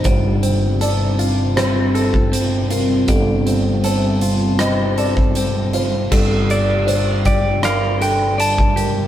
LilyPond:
<<
  \new Staff \with { instrumentName = "Electric slide guitar" } { \time 4/4 \key f \mixolydian \tempo 4 = 79 r1 | r1 | r8 d''4 d''8 f''8 g''8 a''4 | }
  \new Staff \with { instrumentName = "Felt piano" } { \time 4/4 \key f \mixolydian c''4 d''4 c''8 a'4 bes'8 | a'4 c''4 ees''8 d''4 c''8 | a'4 c''4 bes'8 a'4 bes'8 | }
  \new Staff \with { instrumentName = "Clean electric guitar" } { \time 4/4 \key f \mixolydian g8 c'8 a'8 f'8 c'8 a'8 c'8 f'8 | g8 c'8 a'8 f'8 c'8 a'8 c'8 f'8 | g4 d'8 g'8 d''8 d'8 d''8 g'8 | }
  \new Staff \with { instrumentName = "Ambient pad" } { \time 4/4 \key f \mixolydian << { f'1 | ees'1 | g'1 | } \\ { <c g c'>1~ | <c g c'>1 | <d g>1 | } >> }
  \new Staff \with { instrumentName = "Picked electric bass" } { \clef bass \time 4/4 \key f \mixolydian g,,1 | g,,1 | g,,1 | }
  \new DrumStaff \with { instrumentName = "Drums" } \drummode { \time 4/4 <hh bd>8 hh8 hh8 hh8 <hh ss>8 hh16 bd16 hh8 hh8 | <hh bd>8 hh8 hh8 hh8 <hh ss>8 hh16 bd16 hh8 hh8 | <cymc bd>8 hh8 hh8 <hh bd>8 <hh ss>8 hh8 hh16 bd16 hh8 | }
>>